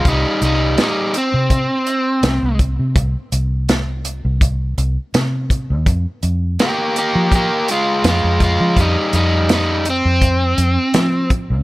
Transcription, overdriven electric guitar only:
X:1
M:4/4
L:1/8
Q:"Swing 16ths" 1/4=83
K:Fdor
V:1 name="Overdriven electric guitar"
[G,E] [G,E] [G,E] C4 z | z8 | z2 [B,G] [B,G] [B,G] [A,F] [A,F] [A,F] | [G,E] [G,E] [G,E] C4 z |]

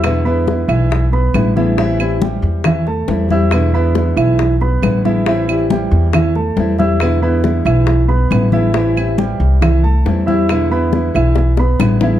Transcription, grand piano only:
X:1
M:4/4
L:1/8
Q:1/4=138
K:Am
V:1 name="Grand piano"
[Eee'] [B,Bb]2 [E,Ee]2 [B,Bb]2 [E,Ee] | [E,Ee]2 [G,Gg]2 [E,Ee] [A,Aa]2 [Eee']- | [Eee'] [B,Bb]2 [E,Ee]2 [B,Bb]2 [E,Ee] | [E,Ee]2 [G,Gg]2 [E,Ee] [A,Aa]2 [Eee']- |
[Eee'] [B,Bb]2 [E,Ee]2 [B,Bb]2 [E,Ee] | [E,Ee]2 [G,Gg]2 [E,Ee] [A,Aa]2 [Eee']- | [Eee'] [B,Bb]2 [E,Ee]2 [B,Bb]2 [E,Ee] |]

